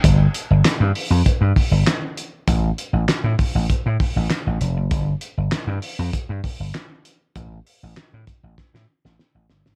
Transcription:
<<
  \new Staff \with { instrumentName = "Slap bass" } { \clef bass \time 4/4 \key a \phrygian \tempo 4 = 98 g,,8 r16 g,,16 r16 g,16 r16 f,16 r16 g,16 r16 g,,16 r4 | a,,8 r16 a,,16 r16 a,16 r16 a,,16 r16 a,16 r16 a,,16 r16 a,,16 f,,16 fis,,16 | g,,8 r16 g,,16 r16 g,16 r16 f,16 r16 g,16 r16 g,,16 r4 | a,,8 r16 a,,16 r16 a,16 r16 a,,16 r16 a,16 r16 a,,16 r16 a,,16 g,,16 aes,,16 | }
  \new DrumStaff \with { instrumentName = "Drums" } \drummode { \time 4/4 <hh bd>8 hh8 <hc hh sn>8 hho8 <hh bd>8 <hho bd>8 <hc hh sn>8 hh8 | <hh bd>8 hh8 <hc hh sn>8 <hho bd>8 <hh bd>8 <hho bd>8 <hc hh sn>8 hh8 | <hh bd>8 hh8 <hc hh sn>8 hho8 <hh bd>8 <hho bd>8 <hc hh sn>8 hh8 | <hh bd>8 hho8 <hc hh sn>8 <hh bd>8 <bd sn>16 sn8 sn16 sn8 sn16 sn16 | }
>>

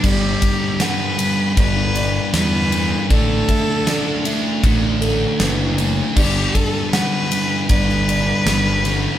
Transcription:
<<
  \new Staff \with { instrumentName = "Felt piano" } { \time 4/4 \key g \major \tempo 4 = 78 d''4 fis''4 d''8 d''4 r8 | d''8 e''8 d''8 e''4 a'8 b'4 | d''4 fis''4 d''8 d''4 r8 | }
  \new Staff \with { instrumentName = "Cello" } { \time 4/4 \key g \major g'4 b'4 b'4 b'4 | a'2 r2 | g'8 a'8 b'4 b'2 | }
  \new Staff \with { instrumentName = "Distorted electric guitar" } { \clef bass \time 4/4 \key g \major <g, d g>4 <g, d g>8 <g, d g>8 <g, d g>4 <g, d g>8 <g, d g>8 | <d a d'>4 <d a d'>8 <d a d'>8 <d a d'>4 <d a d'>8 <d a d'>8 | <g, d g>4 <g, d g>8 <g, d g>8 <g, d g>4 <g, d g>8 <g, d g>8 | }
  \new Staff \with { instrumentName = "Distorted electric guitar" } { \clef bass \time 4/4 \key g \major <g, d g>4 <g, d g>8 <g, d g>8 <g, d g>4 <g, d g>8 <g, d g>8 | <d a d'>4 <d a d'>8 <d a d'>8 <d a d'>4 <d a d'>8 <d a d'>8 | <g, d g>4 <g, d g>8 <g, d g>8 <g, d g>4 <g, d g>8 <g, d g>8 | }
  \new Staff \with { instrumentName = "Fingered electric bass" } { \clef bass \time 4/4 \key g \major g,,8 r4. g,,4 e,4 | a,,8 r4. a,,4 fis,,4 | g,,8 r4. g,,4 g,,4 | }
  \new DrumStaff \with { instrumentName = "Drums" } \drummode { \time 4/4 <cymc bd>8 <bd cymr>8 <cymr sn>8 cymr8 <bd cymr>8 cymr8 <cymr sn>8 cymr8 | <bd cymr>8 <bd cymr>8 <cymr sn>8 cymr8 <bd cymr>8 cymr8 <cymr sn>8 cymr8 | <cymc bd>8 <bd cymr>8 <cymr sn>8 cymr8 <bd cymr>16 sn16 cymr8 <cymr sn>8 <cymr sn>8 | }
>>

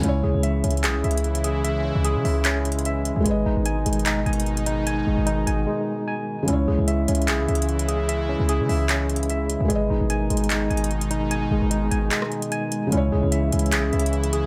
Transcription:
<<
  \new Staff \with { instrumentName = "Tine electric piano" } { \time 4/4 \key cis \minor \tempo 4 = 149 cis'8 gis'8 e''8 cis'8 gis'8 e''4 gis'8 | e''8 cis'8 gis'8 e''8 cis'4 e''4 | gis8 dis'8 gis''8 gis8 dis'8 gis''4 dis'8 | gis''8 gis8 dis'8 gis''8 gis4 gis''4 |
cis'8 gis'8 e''8 cis'8 gis'8 e''4 gis'8 | e''8 cis'8 gis'8 e''8 cis'4 e''4 | gis8 dis'8 gis''8 gis8 dis'8 gis''4 dis'8 | gis''8 gis8 dis'8 gis''8 gis4 gis''4 |
cis'8 gis'8 e''8 cis'8 gis'8 e''4 gis'8 | }
  \new Staff \with { instrumentName = "Felt piano" } { \time 4/4 \key cis \minor <cis gis e' cis''>1~ | <cis gis e' cis''>1 | <gis gis' b' dis''>1~ | <gis gis' b' dis''>1 |
<cis gis e' cis''>1~ | <cis gis e' cis''>1 | <gis gis' b' dis''>1~ | <gis gis' b' dis''>1 |
<cis gis e' cis''>1 | }
  \new Staff \with { instrumentName = "Analog synth pad" } { \clef bass \time 4/4 \key cis \minor << { <cis e e'>1~ | <cis e e'>1 | <b, dis dis'>1~ | <b, dis dis'>1 |
<cis e e'>1~ | <cis e e'>1 | <b, dis dis'>1~ | <b, dis dis'>1 |
<cis e e'>1 | } \\ { gis1~ | gis1~ | gis1~ | gis1 |
gis1~ | gis1~ | gis1~ | gis1~ |
gis1 | } >> }
  \new Staff \with { instrumentName = "808-style bass" } { \clef bass \time 4/4 \key cis \minor cis,8 cis,16 cis,8. cis,8 b,,16 cis,16 cis,4.~ | cis,8. cis,8 cis16 cis,2~ cis,16 cis,16 | gis,,8 gis,,16 gis,,8. gis,,4 gis,,4.~ | gis,,8 gis,,16 gis,,8. gis,,8 r2 |
cis,8 cis,16 cis,8. cis,8 b,,16 cis,16 cis,4.~ | cis,8. cis,8 cis16 cis,2~ cis,16 cis,16 | gis,,8 gis,,16 gis,,8. gis,,4 gis,,4.~ | gis,,8 gis,,16 gis,,8. gis,,8 r2 |
cis,8 cis,16 cis,8. cis,8 b,,16 cis,16 cis,4. | }
  \new DrumStaff \with { instrumentName = "Drums" } \drummode { \time 4/4 hh4 \tuplet 3/2 { hh16 r16 r16 hh16 hh16 hh16 <hc hh>16 r16 r16 hh16 hh16 hh16 } hh16 hh16 hh8 | hh4 hh8 hho8 \tuplet 3/2 { <hc hh>16 r16 r16 hh16 hh16 hh16 } hh8 hh8 | hh4 \tuplet 3/2 { hh16 r16 r16 hh16 hh16 hh16 <hc hh>16 r16 r16 hh16 hh16 hh16 } hh16 hh16 hh8 | hh4 hh8 hh8 r4 r4 |
hh4 \tuplet 3/2 { hh16 r16 r16 hh16 hh16 hh16 <hc hh>16 r16 r16 hh16 hh16 hh16 } hh16 hh16 hh8 | hh4 hh8 hho8 \tuplet 3/2 { <hc hh>16 r16 r16 hh16 hh16 hh16 } hh8 hh8 | hh4 \tuplet 3/2 { hh16 r16 r16 hh16 hh16 hh16 <hc hh>16 r16 r16 hh16 hh16 hh16 } hh16 hh16 hh8 | hh4 hh8 hh8 <hc hh>16 ss16 hh16 hh16 hh8 hh8 |
hh4 \tuplet 3/2 { hh16 r16 r16 hh16 hh16 hh16 <hc hh>16 r16 r16 hh16 hh16 hh16 } hh16 hh16 hh8 | }
>>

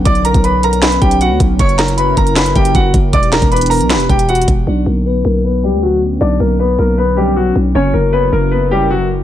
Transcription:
<<
  \new Staff \with { instrumentName = "Grand piano" } { \time 4/4 \key b \minor \tempo 4 = 156 <d'' d'''>8 <ais' ais''>8 <b' b''>8 <ais' ais''>8 <b' b''>8 <g' g''>8 <fis' fis''>8 r8 | <cis'' cis'''>8 <ais' ais''>8 <b' b''>8 <ais' ais''>8 <b' b''>8 <g' g''>8 <fis' fis''>8 r8 | <d'' d'''>8 <ais' ais''>8 <b' b''>8 <ais' ais''>8 <b' b''>8 <g' g''>8 <fis' fis''>8 r8 | <d' d''>8 <ais ais'>8 <b b'>8 <ais ais'>8 <b b'>8 <g g'>8 <fis fis'>8 r8 |
<d' d''>8 <ais ais'>8 <b b'>8 <ais ais'>8 <b b'>8 <g g'>8 <fis fis'>8 r8 | <cis' cis''>8 <ais ais'>8 <b b'>8 <ais ais'>8 <b b'>8 <g g'>8 <fis fis'>8 r8 | }
  \new Staff \with { instrumentName = "Analog synth pad" } { \time 4/4 \key b \minor <d b cis'>1 | <fis e' ais'>1 | <e b d' g'>1 | <d b cis'>1~ |
<d b cis'>1 | <fis e' ais'>1 | }
  \new Staff \with { instrumentName = "808-style bass" } { \clef bass \time 4/4 \key b \minor b,,8. b,,4.~ b,,16 b,,8. d,16 b,,8 | fis,,4. fis,,4 fis,,8 fis,,8 fis,,8 | e,,8. e,,4 b,,16. e,,16. e,,4 e,,8 | b,,8 b,,4 b,,4~ b,,16 d,4~ d,16 |
b,,8 b,,4 b,,2 b,,8 | fis,,8 fis,,4 fis,,2~ fis,,8 | }
  \new DrumStaff \with { instrumentName = "Drums" } \drummode { \time 4/4 <hh bd>16 hh16 hh16 <hh bd>16 hh8 hh16 hh16 <hc hh sn>16 hh16 <hh bd>16 hh16 hh8 <hh bd>8 | <hh bd>16 hh16 <hc hh sn>16 hh16 hh8 <hh bd>16 hh16 <hc hh sn>16 hh16 <hh bd>16 hh16 <hh bd>8 <hh bd>8 | <hh bd>16 hh16 <hc hh sn>16 <hh bd>16 hh32 hh32 hh32 hh32 hho16 hh16 <hc hh sn>16 hh16 <hh bd>16 hh16 \tuplet 3/2 { hh16 hh16 hh16 <hh bd>16 r16 r16 } | r4 r4 r4 r4 |
r4 r4 r4 r4 | r4 r4 r4 r4 | }
>>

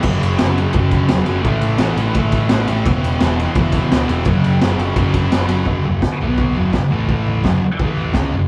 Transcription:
<<
  \new Staff \with { instrumentName = "Distorted electric guitar" } { \clef bass \time 4/4 \key fis \minor \tempo 4 = 170 <fis, cis fis>4 <fis, cis fis>8 <cis fis>8 <fis, cis fis>4 <fis, cis fis>8 <cis fis>8 | <a, e a>4 <a, e a>8 <e a>8 <a, e a>4 <a, e a>8 <e a>8 | <e, b, e>4 <e, b, e>8 <b, e>8 <e, b, e>4 <e, b, e>8 <b, e>8 | <fis, cis fis>4 <fis, cis fis>8 <cis fis>8 <fis, cis fis>4 <fis, cis fis>8 <cis fis>8 |
<fis, cis fis>8 <fis, cis>8 r8 <b, fis b>4 <fis, cis fis>8 <fis, cis>8 <a, e a>8~ | <a, e a>4 <fis, cis fis>8 r8 <a, e a>4 <cis gis cis'>8 <fis, cis>8 | }
  \new Staff \with { instrumentName = "Picked electric bass" } { \clef bass \time 4/4 \key fis \minor fis,,8 fis,,8 fis,,4 fis,,4 e,,8 fis,,8 | a,,8 a,,8 a,,8 a,,8 a,,8 a,,8 a,,8 a,,8 | e,,8 e,,8 e,,4 e,,4 d,8 e,,8 | fis,,8 fis,,8 fis,,8 fis,,8 fis,,8 fis,,8 fis,,8 fis,,8 |
fis,,8 fis,,8 r8 b,,4 fis,,8 fis,,8 a,,8~ | a,,4 fis,,8 r8 a,,4 cis,8 fis,,8 | }
  \new DrumStaff \with { instrumentName = "Drums" } \drummode { \time 4/4 <cymc bd>8 cymr8 <cymr sn>8 cymr8 <bd cymr>8 <bd cymr>8 <cymr sn>8 cymr8 | <bd cymr>8 cymr8 <cymr sn>8 cymr8 <bd cymr>8 <bd cymr>8 <cymr sn>8 cymr8 | <bd cymr>8 cymr8 <cymr sn>8 cymr8 <bd cymr>8 <bd cymr>8 <cymr sn>8 cymr8 | <bd cymr>8 cymr8 <cymr sn>8 cymr8 <bd cymr>8 <bd cymr>8 <cymr sn>8 cymr8 |
<bd tomfh>8 tomfh8 <bd sn tomfh>8 tomfh8 <bd tomfh>8 tomfh8 <bd sn tomfh>8 tomfh8 | <bd tomfh>8 tomfh8 <bd sn tomfh>8 tomfh8 <bd tomfh>8 tomfh8 <bd sn tomfh>8 tomfh8 | }
>>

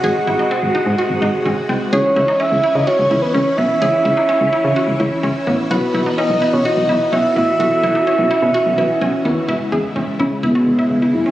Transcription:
<<
  \new Staff \with { instrumentName = "Soft synth lead" } { \time 4/4 \key e \major \tempo 4 = 127 fis''2~ fis''8 r4. | cis''4 e''8. dis''16 cis''8. b'16 cis''8 e''8~ | e''2~ e''8 r4. | b'4 dis''8. cis''16 dis''4 e''8 e''8~ |
e''2. r4 | r4. cis'8 b4 b8 e'8 | }
  \new Staff \with { instrumentName = "Synth keys" } { \time 4/4 \key e \major <fis' gis' dis''>1 | <cis' e' cis''>1 | <cis' e' cis''>1 | <e' fis' b'>1 |
<e' fis' a'>2~ <e' fis' a'>8 <e' fis' b'>4. | r1 | }
  \new Staff \with { instrumentName = "Synth arpeggio sound" } { \time 4/4 \key e \major gis'8 e'16 dis'16 bis8 dis'8 fis'8 dis'8 cis'8 bis8 | gis'8 e'16 dis'16 cis'8 e'8 fis'8 e'8 cis'8 b8 | gis'8 e'16 dis'16 cis'8 e'8 fis'8 e'8 cis'8 b8 | fis'8 e'16 dis'16 cis'8 e'8 fis'8 e'8 cis'8 b8 |
fis'8 e'16 dis'16 cis'8 e'8 fis'8 e'8 cis'8 b8 | e'8 gis'8 cis'8 e'8 e'16 fis'8 e'8 e'8 cis'16 | }
  \new Staff \with { instrumentName = "String machine" } { \time 4/4 \key e \major << { <bis, fis'>1 | <e e'>1~ | <e e'>1 | <e fis'>1~ |
<e fis'>1 | <cis e'>1 | } \\ { gis1 | cis'1~ | cis'1 | b1 |
cis'1 | gis1 | } >> }
  \new Staff \with { instrumentName = "FM bass" } { \clef bass \time 4/4 \key e \major gis,,16 r16 gis,,16 r8 gis,,16 r16 gis,16 r16 gis,,16 gis,,16 r16 gis,,16 r16 bis,,16 r16 | cis,16 r16 cis,16 r8 cis,16 r16 cis16 r16 cis,16 cis,16 r16 cis,16 r16 b,,16 r16 | cis,16 r16 cis,16 r8 cis,16 r16 cis16 r16 cis,16 cis,16 r16 cis,16 r16 a,,16 r16 | b,,16 r16 b,,16 r8 b,,16 r16 b,16 r16 b,,16 b,,16 r16 b,,16 r16 a,,16 r16 |
b,,16 r16 b,,16 r8 b,,16 r16 b,16 r16 b,,16 b,,16 r16 b,,16 r16 dis,16 r16 | e,,16 r16 e,16 r16 e,,16 r16 e,,16 r16 e,,16 r16 e,,16 r16 e,,16 r16 fis,,16 r16 | }
>>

